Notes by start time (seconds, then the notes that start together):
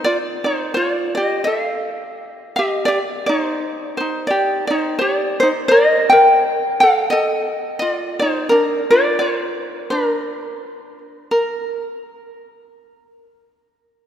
0.04 F4 D5
0.44 D#4 C5
0.74 F4 C#5
0.91 D5
1.15 G4 D#5
1.44 A4 E5
1.61 F5
2.56 G4 D#5
2.85 G4 D5
3.26 D#4 C5
3.97 D#4 C5
4.27 G4 D5
4.67 D#4 C5
4.99 G4 D5
5.40 D#4 C5
5.68 A#4 D#5
6.10 A#4 G5
6.80 A4 F5
7.10 A4 D#5
7.79 F4 D#5
7.90 D5
8.19 D#4 C5
8.49 D4 A#4
8.90 F4 D5
9.19 F4 C5
9.90 D4 A#4
11.31 A#4